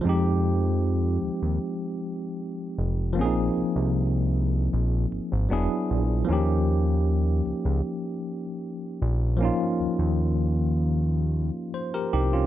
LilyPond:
<<
  \new Staff \with { instrumentName = "Tine electric piano" } { \time 4/4 \key ees \mixolydian \tempo 4 = 77 << { r1 | r1 | r1 | r2. c''16 <g' bes'>16 <ees' g'>16 <des' f'>16 | } \\ { <f aes c' ees' g'>1 | <f bes c' des' ees' aes'>2. <fis b d' e' gis'>4 | <f bes des' ees' g'>1 | <f bes des' ees' f'>1 | } >> }
  \new Staff \with { instrumentName = "Analog synth bass" } { \clef bass \time 4/4 \key ees \mixolydian f,4. ees,16 ees,16 r4. f,,8 | bes,,8 c,16 c,4~ c,16 bes,,8 aes,,16 aes,,16 e,,16 r16 bes,,8 | ees,4. des,16 des,16 r4. bes,,8~ | bes,,16 r16 ees,16 ees,2 r8. c,8 | }
>>